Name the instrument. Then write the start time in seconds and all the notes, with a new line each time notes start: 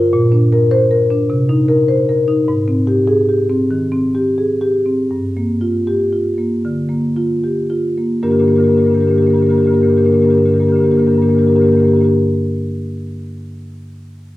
marimba
Already playing: F4
0.13 A#2
0.32 D4
0.52 A#4
0.71 C5
0.91 A#4
1.11 D4
1.30 C3
1.49 D#4
1.68 A#4
1.88 C5
2.09 A#4
2.28 D#4
2.48 G#2
2.68 C4
2.87 G4
3.07 G#4
3.29 G4
3.50 C4
3.71 D#3
3.92 C4
4.15 G4
4.38 G#4
4.61 G4
4.86 C4
5.11 G2
5.37 A#3
5.61 F4
5.87 G4
6.13 F4
6.38 A#3
6.65 D3
6.89 A#3
7.16 F4
7.44 G4
7.70 F4
7.97 A#3
8.23 G2 D3 A#3 D4 G4 A#4
8.30 G2 D3 A#3 D4 G4 A#4
8.38 G2 D3 A#3 D4 G4 A#4
8.45 A#3 D4 G4 A#4
8.49 G2 D3
8.53 A#3 D4 G4 A#4
8.58 G2 D3 A#4
8.64 D3 A#3 D4 G4
8.68 G2 G4 A#4
8.72 A#3 D4
8.76 G2 D3 A#3 G4 A#4
8.82 D3 D4 G4 A#4
8.87 G2 A#3 D4
8.92 D3 A#3 G4 A#4
8.98 G2 D4 G4 A#4
9.03 D3 A#3
9.07 G2 A#3 D4 G4 A#4
9.13 G2 D3 D4 A#4
9.18 D3 A#3 G4
9.22 G2 D4 A#4
9.27 A#3 D4 G4 A#4
9.31 G2 D3 A#3 G4
9.38 D3 D4 A#4
9.42 G2 A#3 G4
9.46 D3 A#3 D4 G4 A#4
9.51 G2 D4 A#4
9.58 G2 D3 A#3 G4 A#4
9.63 D4 G4
9.67 D3 A#3 A#4
9.71 G2 A#3 D4 G4 A#4
9.76 D3
9.80 G2 A#3 D4 G4 A#4
9.85 G2 D3
9.89 A#3 D4 G4 A#4
9.93 G2 D3 D4 G4
9.98 A#3 A#4
10.02 G2 D3 D4 G4 A#4
10.06 A#3
10.11 D3 A#3 D4 G4 A#4
10.15 G2
10.19 D3 A#3 D4 G4 A#4
10.24 G2 D3 A#4
10.30 G2 A#3 D4 G4
10.35 D3 A#3 D4 G4 A#4
10.42 G2 D3 A#3 G4 A#4
10.47 G2 D4 A#4
10.52 D3 A#3 G4
10.56 A#3 D4 A#4
10.61 G2 D3 G4 A#4
10.65 G2 A#3 D4 G4
10.71 D3 D4 A#4
10.76 G2 A#3 G4 A#4
10.80 D3 D4 G4
10.84 A#3 A#4
10.88 G2 D3 A#3 D4 G4
10.95 D3 A#4
10.99 G2 A#3 D4 G4
11.03 D3 A#3 D4 G4 A#4
11.08 G2 A#4
11.14 G2 D3 A#3 D4 G4 A#4
11.22 D3 A#3 D4 G4 A#4
11.29 G2 A#3 D4 G4
11.33 D3 A#3 A#4
11.38 G2 D3 D4 G4 A#4
11.44 G2 A#3 D4 G4
11.49 D3 A#4
11.53 G2 A#3 D4 G4 A#4
11.60 D3 A#3 G4 A#4
11.64 G2 D4
11.69 D3 A#3 D4 G4 A#4
11.74 G2 D3 A#3
11.79 G2 D4 G4 A#4
11.84 D3 A#3 D4 G4 A#4
11.92 G2 D3 A#3 A#4
11.96 D4 G4
12.01 G2 D3 A#3 D4 G4 A#4